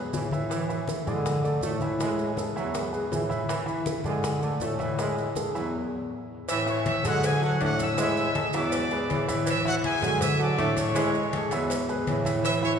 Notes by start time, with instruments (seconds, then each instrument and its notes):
Already playing: grand piano G#3 G#4 B4
0.13 bass clarinet A2, trombone section E3, high bongo, low bongo, high conga, maracas
0.31 grand piano E3 E4 E5, high bongo, high conga, maracas
0.49 trombone section E3, high bongo, high conga, maracas
0.69 grand piano E3 E4 E5, high bongo, high conga, maracas
0.88 high bongo, high conga, maracas
1.07 bass clarinet D3, grand piano E3 G#4 D5, trombone section G#3, high bongo, high conga, low conga, maracas
1.26 high bongo, high conga, low conga, maracas
1.44 grand piano A3 A4 D5, high conga, maracas
1.61 bass clarinet A2, trombone section A3, high bongo, low bongo, high conga, maracas
1.81 grand piano E3 E4 E5, high bongo, high conga, maracas
2.00 grand piano E3 E4 E5, trombone section G#3, high bongo, high conga, maracas
2.18 high bongo, high conga, maracas
2.37 grand piano G#3 G#4 A4, high bongo, high conga, maracas
2.56 bass clarinet E2, grand piano E3 E4 E5, trombone section F#3, high bongo, high conga, maracas
2.75 high bongo, high conga, maracas
2.93 grand piano G#3 G#4 B4, high conga, maracas
3.12 bass clarinet A2, trombone section E3, high bongo, low bongo, high conga, maracas
3.29 grand piano E3 E4 E5, high bongo, high conga, maracas
3.49 trombone section E3, high bongo, high conga, maracas
3.66 grand piano E3 E4 E5, high bongo, high conga, maracas
3.86 high bongo, high conga, maracas
4.04 bass clarinet D3, grand piano E3 G#4 D5, trombone section G#3, high bongo, high conga, low conga, maracas
4.23 high bongo, high conga, low conga, maracas
4.41 grand piano A3 A4 D5, high conga, maracas
4.60 bass clarinet A2, trombone section A3, high bongo, low bongo, high conga, maracas
4.79 grand piano E3 E4 E5, high bongo, high conga, maracas
4.99 grand piano E3 E4 E5, trombone section G#3, high bongo, high conga, maracas
5.17 high bongo, high conga, maracas
5.35 grand piano G#3 G#4 A4, high bongo, high conga, maracas
5.55 bass clarinet E2, grand piano E3 E4 E5, trombone section F#3, high bongo, high conga, maracas
6.48 bass clarinet A2, trombone section E3, trumpet section E5 E6, cowbell, high conga, maracas
6.66 grand piano E3 E4 E5, trumpet section C#5 C#6, high conga, maracas
6.86 trumpet section E5 E6, cowbell, high conga, maracas
7.04 bass clarinet D3, grand piano F#3 F#4 G#4, trombone section G#3, trumpet section F#4 F#5, cowbell, high conga, low conga, maracas
7.23 trumpet section G#4 G#5, cowbell, high conga, maracas
7.41 grand piano F#3 F#4 A4, trumpet section F#4 F#5, high conga, maracas
7.60 bass clarinet A2, grand piano D3 D4 D5, trombone section A3, trumpet section F#4 F#5, cowbell, high conga, maracas
7.79 trumpet section E5 E6, cowbell, high conga, maracas
7.97 grand piano E3 E4 E5, trombone section G#3, cowbell, high conga, maracas
8.17 high conga, maracas
8.35 grand piano G#3 G#4 A4, cowbell, high conga, maracas
8.53 bass clarinet E2, grand piano E3 E4 E5, trombone section F#3, trumpet section D5 D6, cowbell, high conga, maracas
8.72 cowbell, high conga, maracas
8.91 grand piano G#3 G#4 B4, high conga, maracas
9.08 bass clarinet A2, trombone section E3, cowbell, high conga, maracas
9.28 grand piano E3 E4 E5, cowbell, high conga, maracas
9.45 trombone section E3, trumpet section E5 E6, cowbell, high conga, maracas
9.65 grand piano E3 E4 E5, trumpet section F#4 F#5, high conga, maracas
9.84 trumpet section G#4 G#5, cowbell, high conga, maracas
10.02 bass clarinet D3, grand piano F#3 F#4 G#4, trombone section G#3, cowbell, high conga, low conga, maracas
10.21 trumpet section E5 E6, cowbell, high conga, low conga, maracas
10.39 grand piano F#3 F#4 A4, trumpet section D5 D6, high conga, maracas
10.57 bass clarinet A2, grand piano D3 D4 D5, trombone section A3, cowbell, high conga, maracas
10.77 trumpet section C#5 C#6, cowbell, high conga, maracas
10.95 grand piano E3 E4 E5, trombone section G#3, cowbell, high conga, maracas
11.14 high conga, maracas
11.33 grand piano G#3 G#4 A4, cowbell, high conga, maracas
11.51 bass clarinet E2, grand piano E3 E4 E5, trombone section F#3, cowbell, high conga, maracas
11.70 cowbell, high conga, maracas
11.89 grand piano G#3 G#4 B4, high conga, maracas
12.07 bass clarinet A2, trombone section E3, cowbell, high conga, maracas
12.25 grand piano E3 E4 E5, cowbell, high conga, maracas
12.44 trombone section E3, trumpet section E5 E6, cowbell, high conga, maracas
12.62 grand piano E3 E4 E5, trumpet section C#5 C#6, high conga, maracas